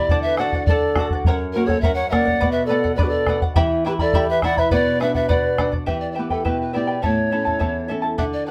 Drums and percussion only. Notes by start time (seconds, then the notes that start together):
0.09 bombo low
0.37 bombo rim
0.52 bombo low
0.67 bombo low
0.96 bombo rim, bombo low
1.10 bombo low
1.24 bombo low
1.69 bombo low
1.83 bombo low
2.13 bombo rim, bombo low
2.27 bombo low
2.42 bombo low
2.85 bombo low
2.99 bombo low
3.27 bombo rim, bombo low
3.42 bombo low
3.56 bombo low
3.99 bombo low
4.13 bombo low
4.42 bombo rim, bombo low
4.57 bombo low
4.71 bombo low
5.01 bombo rim
5.15 bombo low
5.30 bombo low
5.58 bombo rim, bombo low
5.73 bombo low
5.88 bombo low
6.30 bombo low
6.45 bombo low
7.03 bombo low
7.47 bombo low
7.61 bombo low
8.18 bombo low